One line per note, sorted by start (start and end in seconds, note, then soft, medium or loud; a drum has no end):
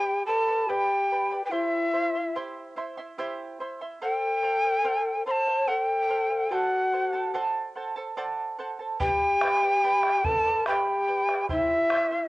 0.00 0.23 G4 loud
0.00 0.27 G4 medium
0.00 0.27 B4 medium
0.00 0.28 D5 loud
0.00 0.23 G5 loud
0.00 0.26 G5 medium
0.00 0.28 B5 medium
0.26 0.70 A4 medium
0.26 0.48 B4 medium
0.26 0.47 D5 medium
0.26 0.48 G5 medium
0.26 0.71 A5 loud
0.26 0.46 B5 medium
0.47 0.68 B4 soft
0.47 0.69 D5 soft
0.47 0.68 B5 medium
0.68 1.44 G4 medium
0.68 1.10 G4 medium
0.68 1.11 B4 loud
0.68 1.11 D5 loud
0.68 1.45 G5 medium
0.68 1.10 G5 medium
0.68 1.11 B5 medium
1.11 1.32 B4 medium
1.11 1.31 D5 medium
1.11 1.31 G5 medium
1.11 1.30 B5 medium
1.31 1.52 B4 soft
1.31 1.52 D5 soft
1.31 1.52 B5 medium
1.44 1.52 B4 medium
1.44 1.53 G5 medium
1.51 2.34 E4 medium
1.51 1.93 E4 medium
1.51 1.93 G4 medium
1.51 1.92 C5 medium
1.51 2.35 E5 medium
1.51 1.94 E5 medium
1.51 1.94 C6 medium
1.94 2.15 E4 medium
1.94 2.14 C5 medium
1.94 2.15 E5 medium
1.94 2.14 C6 medium
2.15 2.35 E4 soft
2.15 2.35 E5 medium
2.15 2.35 C6 medium
2.36 2.76 E4 medium
2.36 2.77 G4 medium
2.36 2.75 C5 medium
2.36 2.76 E5 loud
2.36 2.77 C6 medium
2.76 2.97 E4 medium
2.76 2.97 C5 medium
2.76 2.97 E5 medium
2.76 2.96 C6 medium
2.97 3.17 E4 soft
2.97 3.18 E5 medium
2.97 3.18 C6 medium
3.18 3.59 E4 loud
3.18 3.60 G4 loud
3.18 3.59 C5 loud
3.18 3.60 E5 loud
3.18 3.60 C6 medium
3.60 3.81 E4 medium
3.60 3.81 C5 medium
3.60 3.80 E5 medium
3.60 3.80 C6 medium
3.81 4.01 E4 soft
3.81 4.02 E5 soft
3.81 4.02 C6 medium
4.01 4.41 A4 medium
4.01 5.23 A4 loud
4.01 4.42 C5 medium
4.01 4.43 F5 medium
4.01 5.23 G5 loud
4.43 4.64 A4 medium
4.43 4.64 C5 medium
4.43 4.63 F5 medium
4.64 4.83 C5 medium
4.64 4.84 F5 medium
4.84 5.25 A4 medium
4.84 5.25 C5 medium
4.84 5.26 F5 medium
5.26 5.47 A4 medium
5.26 5.70 C5 medium
5.26 5.47 C5 medium
5.26 5.46 F5 medium
5.26 5.32 C6 loud
5.31 5.69 A5 loud
5.47 5.67 C5 medium
5.47 5.67 F5 medium
5.67 6.08 A4 medium
5.67 6.53 A4 medium
5.67 6.09 C5 medium
5.67 6.10 F5 medium
5.67 5.79 F#5 loud
5.79 6.50 G5 loud
6.09 6.30 A4 medium
6.09 6.30 C5 medium
6.09 6.29 F5 medium
6.30 6.50 C5 soft
6.30 6.51 F5 medium
6.50 7.35 F#4 medium
6.50 6.92 A4 medium
6.50 6.92 C5 medium
6.50 6.92 D5 medium
6.50 6.91 F#5 medium
6.50 6.56 G5 medium
6.50 6.93 A5 medium
6.55 7.33 F#5 medium
6.92 7.13 A4 medium
6.92 7.13 C5 medium
6.92 7.13 F#5 medium
6.92 7.12 A5 medium
7.13 7.33 A4 medium
7.13 7.33 C5 soft
7.13 7.34 A5 medium
7.34 7.75 A4 medium
7.34 7.75 C5 medium
7.34 7.75 D5 medium
7.34 7.74 F#5 medium
7.34 7.75 A5 medium
7.75 7.96 A4 medium
7.75 7.96 C5 medium
7.75 7.96 F#5 medium
7.75 7.95 A5 medium
7.96 8.16 A4 medium
7.96 8.16 C5 soft
7.96 8.17 A5 medium
8.17 8.58 A4 medium
8.17 8.58 C5 medium
8.17 8.59 D5 medium
8.17 8.57 F#5 medium
8.17 8.59 A5 loud
8.59 8.79 A4 medium
8.59 8.80 C5 medium
8.59 8.79 F#5 medium
8.59 8.78 A5 medium
8.79 9.00 A4 medium
8.79 8.99 C5 soft
8.79 9.00 A5 medium
9.00 9.42 G4 medium
9.00 10.26 G4 loud
9.00 9.41 B4 medium
9.00 9.41 D5 medium
9.00 9.40 G5 medium
9.00 10.26 G5 loud
9.00 9.42 B5 medium
9.00 bombo low medium
9.21 bombo rim soft
9.41 9.62 B4 medium
9.41 9.62 D5 medium
9.41 9.63 G5 medium
9.41 9.61 B5 medium
9.41 bombo rim medium
9.62 9.83 B4 medium
9.62 9.83 D5 soft
9.62 9.83 B5 medium
9.84 10.25 G4 medium
9.84 10.24 B4 medium
9.84 10.25 D5 medium
9.84 10.24 G5 medium
9.84 10.25 B5 medium
10.03 bombo rim medium
10.24 10.66 A4 medium
10.24 10.45 B4 medium
10.24 10.44 D5 medium
10.24 10.46 G5 medium
10.24 10.67 A5 loud
10.24 10.44 B5 medium
10.24 bombo low medium
10.45 10.66 B4 soft
10.45 10.66 D5 medium
10.45 10.66 B5 medium
10.66 11.08 G4 medium
10.66 11.46 G4 medium
10.66 11.06 B4 medium
10.66 11.07 D5 medium
10.66 11.06 G5 medium
10.66 11.46 G5 loud
10.66 11.07 B5 medium
10.66 bombo rim medium
11.07 11.28 B4 medium
11.07 11.27 D5 medium
11.07 11.28 G5 medium
11.07 11.26 B5 medium
11.28 11.50 B4 soft
11.28 11.50 D5 soft
11.28 11.49 B5 medium
11.28 bombo rim medium
11.49 11.63 D#4 medium
11.49 11.90 E4 medium
11.49 11.91 G4 medium
11.49 11.89 C5 medium
11.49 11.90 E5 medium
11.49 12.28 E5 medium
11.49 11.90 C6 medium
11.49 bombo low medium
11.63 12.28 E4 medium
11.71 bombo rim soft
11.90 12.11 E4 medium
11.90 12.12 C5 medium
11.90 12.11 E5 medium
11.90 12.10 C6 medium
11.90 bombo rim medium
12.11 12.28 E4 soft
12.11 12.28 E5 medium
12.11 12.28 C6 medium